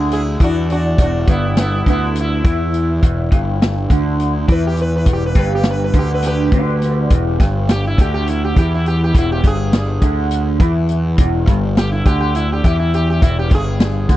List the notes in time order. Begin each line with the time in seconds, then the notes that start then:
Already playing: D2 D3 E4 G#4
0.12 E4 G#4, closed hi-hat
0.40 E2 E3 D4 F#4, kick, closed hi-hat
0.70 D4 F#4, closed hi-hat
0.98 E1 E2 D4 F#4, kick, closed hi-hat
1.27 G1 G2 B3 E4, kick, closed hi-hat
1.57 B3 E4, snare, closed hi-hat
1.86 D2 D3 B3 E4, kick, closed hi-hat
2.15 closed hi-hat
2.20 E4
2.44 E2 E3, kick, closed hi-hat
2.74 closed hi-hat
3.03 E1 E2, kick, closed hi-hat
3.32 G1 G2, kick, closed hi-hat
3.62 snare, closed hi-hat
3.90 D2 D3, kick, closed hi-hat
4.20 closed hi-hat
4.48 E2 E3 B4, kick, closed hi-hat
4.67 G4
4.77 closed hi-hat
4.82 B4
4.96 B4
5.06 E1 E2, kick, closed hi-hat
5.13 G4
5.26 B4
5.35 G1 G2 B4, kick, snare, closed hi-hat
5.55 G4
5.63 snare, closed hi-hat
5.71 B4
5.84 B4
5.93 D2 D3, kick, closed hi-hat
5.99 G4
6.14 B4
6.22 G4, snare, closed hi-hat
6.27 B4
6.52 D2 D3, kick, closed hi-hat
6.82 snare, closed hi-hat
7.10 E1 E2, kick, closed hi-hat
7.40 G1 G2, kick, snare, closed hi-hat
7.69 G4, snare, closed hi-hat
7.87 E4
7.98 D2 D3 G4, kick, closed hi-hat
8.14 G4
8.27 E4, closed hi-hat
8.45 G4
8.56 E2 E3 G4, kick, closed hi-hat
8.75 E4
8.86 G4, closed hi-hat
9.04 G4
9.14 E1 E2 E4, kick, closed hi-hat
9.32 G4
9.44 G1 G2 G#4, kick, closed hi-hat
9.73 snare, closed hi-hat
10.02 D2 D3, kick, closed hi-hat
10.31 closed hi-hat
10.60 E2 E3, kick, closed hi-hat
10.89 closed hi-hat
11.18 E1 E2, kick, closed hi-hat
11.47 G1 G2, kick, closed hi-hat
11.77 G4, snare, closed hi-hat
11.92 E4
12.05 D2 D3 G4, kick, closed hi-hat
12.20 G4
12.35 E4, closed hi-hat
12.53 G4
12.64 E2 E3 G4, kick, closed hi-hat
12.79 E4
12.94 G4, closed hi-hat
13.10 G4
13.22 E1 E2 E4, kick, closed hi-hat
13.39 G4
13.51 G1 G2, kick, closed hi-hat
13.55 G#4
13.80 snare, closed hi-hat
14.09 D2 D3, kick, snare, closed hi-hat